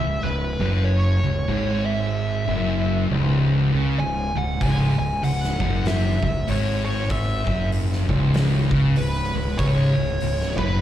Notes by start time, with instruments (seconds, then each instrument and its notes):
Already playing: distorted electric guitar C#2, lead electric guitar E5
0.00 fingered electric bass C#1
0.23 fingered electric bass C#1, distorted electric guitar C#2, lead electric guitar B4
0.60 fingered electric bass F#1, distorted electric guitar F#2
0.84 lead electric guitar C#5
1.23 fingered electric bass C#1, distorted electric guitar C#2
1.48 fingered electric bass G#1, distorted electric guitar G#2
1.86 lead electric guitar E5
2.47 fingered electric bass F#1, distorted electric guitar F#2
3.09 fingered electric bass C#1, distorted electric guitar C#2
3.73 fingered electric bass C#2, distorted electric guitar C#3
3.99 fingered electric bass C#1, distorted electric guitar C#2, lead electric guitar G#5
4.35 fingered electric bass C#1, distorted electric guitar C#2, lead electric guitar F#5
4.61 fingered electric bass C#1, distorted electric guitar C#2, lead electric guitar G#5, kick, open hi-hat
4.97 fingered electric bass C#1, distorted electric guitar C#2, lead electric guitar G#5
5.23 fingered electric bass C#1, distorted electric guitar C#2, lead electric guitar F#5, open hi-hat
5.44 snare
5.60 fingered electric bass F#1, distorted electric guitar F#2, kick
5.85 lead electric guitar E5, snare, open hi-hat
6.22 fingered electric bass C#1, distorted electric guitar C#2, lead electric guitar E5, kick
6.47 fingered electric bass G#1, distorted electric guitar G#2, lead electric guitar C#5, open hi-hat
6.85 lead electric guitar C#5
7.10 lead electric guitar E5, kick, open hi-hat
7.46 fingered electric bass F#1, distorted electric guitar F#2, kick
7.72 open hi-hat
7.92 snare
8.09 fingered electric bass C#1, distorted electric guitar C#2, kick
8.34 snare, open hi-hat
8.71 fingered electric bass C#2, distorted electric guitar C#3, kick
8.96 fingered electric bass C#1, distorted electric guitar C#2, lead electric guitar B4, open hi-hat
9.35 fingered electric bass C#1, distorted electric guitar C#2
9.58 fingered electric bass C#1, distorted electric guitar C#2, lead electric guitar C#5, kick, open hi-hat
9.96 fingered electric bass C#1, distorted electric guitar C#2
10.20 fingered electric bass C#1, distorted electric guitar C#2, open hi-hat
10.41 snare
10.58 fingered electric bass F#1, distorted electric guitar F#2, lead electric guitar B4, kick